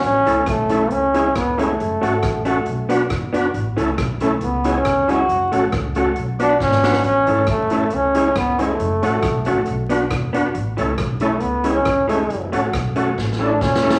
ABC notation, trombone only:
X:1
M:4/4
L:1/16
Q:1/4=137
K:A
V:1 name="Trombone"
C4 A,4 C4 B,2 A,2- | A,8- A,2 z6 | z6 A,2 B,3 C3 F2- | F2 z8 D2 C4 |
C4 A,4 C4 B,2 A,2- | A,8- A,2 z6 | z6 A,2 B,3 C3 A,2- | A,2 z8 D2 C4 |]